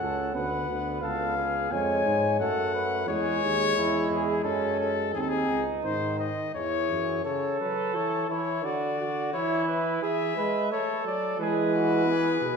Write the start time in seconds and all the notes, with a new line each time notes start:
Already playing: C#4 F#5
0.01 C#2 A4
0.34 D2 B3 B4 F#5
0.68 D2
1.02 C#2 A4 F5
1.37 G#4
1.71 F2 G#3 C#5 G#5
2.05 G#2
2.40 F#2 A3 A4 F#5
2.74 B4
3.08 E2 G#3 G#4 C#5
3.42 D#2
3.76 E2 E4
4.10 E2 G#4
4.44 F#2 C#4 A4
4.80 A4
5.14 D#2 C4 D#4 G#4
5.21 A4
5.29 G#4
5.49 C#2
5.84 G#2 D#3 C5
6.19 D#5
6.55 E2 E3 G#4 C#5
6.90 F#2
7.24 C#3 A4 C#5
7.60 F#3 B4
7.95 E3 C#5
8.29 E3 E4 C#5
8.64 D3 F#4 D5
8.99 F#4
9.33 E3 E4 C#5
9.68 B4
10.02 E3 G#4 E5
10.36 G#3 B4
10.70 A3 A4 C#5
11.05 F#3 D5
11.38 E3 G#3 G#4 B4
11.75 F#4
12.06 B3 G#4
12.41 B2 G#4